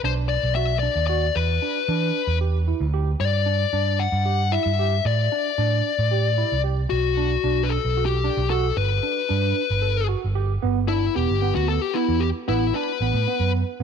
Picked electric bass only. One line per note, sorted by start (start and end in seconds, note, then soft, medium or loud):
0.03 0.37 B1 medium
0.43 0.87 B1 medium
0.95 1.29 D#2 medium
1.36 1.58 E2 medium
1.88 2.11 E3 medium
2.27 2.72 E2 medium
2.80 3.14 D2 medium
3.20 3.64 G2 medium
3.73 4.06 G2 medium
4.12 4.57 G2 medium
4.66 4.99 G2 medium
5.05 5.27 A2 medium
5.58 5.80 A2 medium
5.99 6.43 A2 medium
6.52 6.85 C2 medium
6.91 7.36 B1 medium
7.44 7.77 B1 medium
7.85 8.29 B1 medium
8.37 8.70 B1 medium
8.76 8.99 G1 medium
9.30 9.52 G2 medium
9.70 10.14 G1 medium
10.24 10.57 G1 medium
10.64 11.07 G1 medium
11.16 11.27 E1 medium
11.30 11.51 G1 medium
11.56 11.78 D2 medium
12.09 12.30 E2 medium
12.49 12.70 A1 medium
13.00 13.12 A1 medium
13.14 13.25 A2 medium
13.40 13.62 F#2 medium
13.80 13.83 A1 medium